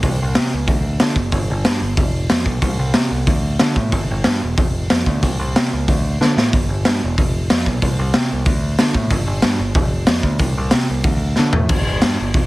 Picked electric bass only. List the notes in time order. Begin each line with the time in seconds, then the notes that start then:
0.04 C2
0.22 C2
0.37 C3
0.54 C#2
0.67 D2
1.01 D3
1.16 F#1
1.32 G1
1.50 G1
1.66 G2
1.81 G1
1.97 F1
2.30 F2
2.46 B1
2.62 C2
2.79 C2
2.95 C3
3.11 C2
3.27 D2
3.61 D3
3.76 A2
3.93 G1
4.11 G1
4.26 G2
4.43 E1
4.58 F1
4.91 F2
5.06 D2
5.22 C2
5.39 C2
5.56 C3
5.73 C#2
5.88 D2
6.21 D3
6.37 A2
6.54 G1
6.69 G1
6.86 G2
7.04 E1
7.18 F1
7.51 F2
7.67 B1
7.82 C2
7.99 C2
8.16 C3
8.32 C2
8.46 D2
8.80 D3
8.95 A2
9.11 G1
9.27 G1
9.44 G2
9.59 G1
9.75 F1
10.08 F2
10.23 D2
10.39 C2
10.58 C2
10.74 C3
10.90 C2
11.04 D2
11.39 D3
11.56 A2
11.70 G1
11.86 G1
12.03 G2
12.20 G1
12.35 F1